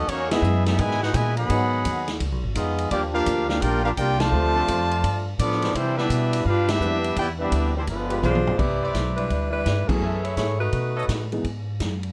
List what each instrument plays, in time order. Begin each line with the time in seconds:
0.08 upright bass E2, trumpet section A#3 D#4 F#4 C#5, trombone section C#4, kick, ride
0.29 trombone section E3 G#3 B3 E4 G#4, trumpet section B3 G#4 D#5 E5, snare, ride
0.42 upright bass F#2, hi-hat pedal
0.66 trombone section G#3 B3 E4, trumpet section B3 D#4 G#4 E5, snare, ride
0.78 upright bass G#2, trombone section B2 D#3 G#3, trumpet section E4 B4 D#5 G#5, kick, ride
0.91 snare
1.01 trumpet section D#4 G#4 B4 F#5, trombone section F#4, snare
1.14 upright bass A#2, trombone section B2 D#3 G#3, trumpet section E4 B4 D#5 G#5, kick, hi-hat pedal, ride
1.37 trombone section D#3 F#3 B3, trumpet section G#4 D#5 F#5 B5, ride
1.49 upright bass G#2, trombone section F#3 B3 D#4 G#4, kick, ride
1.85 upright bass D#2, kick, hi-hat pedal, ride
2.08 snare, ride
2.20 upright bass C#2, kick, ride
2.32 upright bass B1
2.44 upright bass G#1
2.55 upright bass F2, trombone section G#3 B3 D#4, trumpet section B3 F4 G#4 D#5, kick, hi-hat pedal, ride
2.78 ride
2.91 upright bass D#2, trombone section F3 G3 A#3 D4 F4 G4, trumpet section A#3 F4 G4 D5, kick, ride
3.13 trombone section A#3 D4 F4, trumpet section D4 G4 A#4 F5
3.26 upright bass D2, kick, hi-hat pedal, ride
3.48 trombone section A#3 D4 F4, trumpet section D4 G4 A#4 F5, snare
3.61 upright bass A#1, trombone section A#3 D4 G4, trumpet section F4 A#4 D5 G5, kick, ride
3.84 trombone section A#3 D4 F4, trumpet section D4 G4 A#4 F5
3.97 upright bass C2, trombone section A#3 D4 G4, trumpet section F4 A#4 D5 G5, kick, hi-hat pedal, ride
4.20 trombone section C3 F3 A3, trumpet section F4 C5 D5 A5, snare, ride
4.32 upright bass D2
4.54 trombone section F3 C4 D4 A4
4.68 upright bass F2, kick, hi-hat pedal, ride
4.91 ride
5.04 upright bass G2, kick, ride
5.39 upright bass A2, trombone section F3 B3 D4, trumpet section B3 F4 A4 D5, kick, hi-hat pedal, ride
5.52 snare
5.61 trombone section E3 C4 D4 C5, snare, ride
5.75 upright bass C3, trombone section E3 G3 C4, trumpet section G3 D4 E4 C5, kick, ride
5.98 trombone section G3 B3 E4, trumpet section D4 G4 B4 E5, snare
6.10 upright bass B2, kick, hi-hat pedal, ride
6.33 ride
6.45 upright bass G2, trumpet section D4 G4 B4 F5, trombone section F4, kick
6.68 trombone section G3 B3 E4, trumpet section D4 G4 B4 E5, snare, ride
6.80 upright bass F2, trombone section E3 C4 D4 B4, hi-hat pedal
7.04 ride
7.16 upright bass E2, trombone section B3 E4 G4, trumpet section E4 B4 D5 G5, kick, ride
7.39 trombone section C3 E3 G3 B3 D4 E4 B4, trumpet section D4 G4 B4 E5
7.52 upright bass D2, kick, hi-hat pedal, ride
7.76 trombone section E3 G3 C4, trumpet section G3 D4 E4 C5
7.87 upright bass G1, trombone section D3 F3 B3, trumpet section G#3 D4 F4 B4, kick, ride
8.10 trombone section G#3 F4 G4 B4, ride
8.23 upright bass B1, saxophone section G#3 D4 F4 C5, hi-hat pedal, mid tom
8.35 mid tom
8.47 floor tom
8.58 upright bass C2, saxophone section B3 E4 G4 D5, kick, crash
8.82 trumpet section B4 C5 D5 E5
8.94 upright bass B1, kick, snare, hi-hat pedal, ride
9.16 saxophone section G3 D4 E4 B4, ride
9.30 upright bass D2, kick, ride
9.51 saxophone section G3 D4 E4 B4
9.66 upright bass G2, kick, snare, hi-hat pedal, ride
9.87 saxophone section E3 C#4 G#4 A4, grand piano F#3 A3 B3 E4 G#4, muted upright bass stroke, kick, crash
10.00 upright bass F#2, trumpet section G#4 A4 B4 E5
10.23 saxophone section A3 E4 G#4 C#5, ride
10.37 upright bass G#2, saxophone section A3 E4 G#4 C#5, kick, snare, hi-hat pedal, ride
10.59 saxophone section A3 D#4 F#4 B4
10.72 upright bass B2, kick, ride
10.95 trumpet section A4 B4 C#5 D#5
11.08 upright bass A2, kick, snare, hi-hat pedal, ride
11.32 grand piano E3 G#3 B3 D#4 G#4, ride
11.44 upright bass G#2, kick, ride
11.80 upright bass F#2, kick, snare, hi-hat pedal, ride
12.03 ride